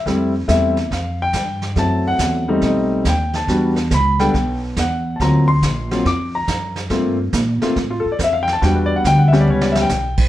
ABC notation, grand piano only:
X:1
M:4/4
L:1/16
Q:"Swing" 1/4=140
K:Edor
V:1 name="Grand piano"
e2 z2 e4 =f2 g6 | a2 f4 z2 ^d4 g2 a2- | a4 b2 g4 z2 f4 | [a^a]2 =c'6 d'2 a4 z2 |
z8 z =F A d e =f g a | g B d f g f e d c d e g4 z |]
V:2 name="Grand piano"
[G,A,=CE]2 z2 [G,A,CE]2 z8 z2 | [F,A,=CE]6 [G,A,C_E]6 z4 | [G,B,DF]2 z4 [G,B,DA]2 z8 | [F,^A,=C^E]2 z4 [F,A,CE]2 z8 |
[A,_B,=C=F]2 z4 [A,B,CF]2 z8 | [G,B,DF]6 [G,B,CG]6 z4 |]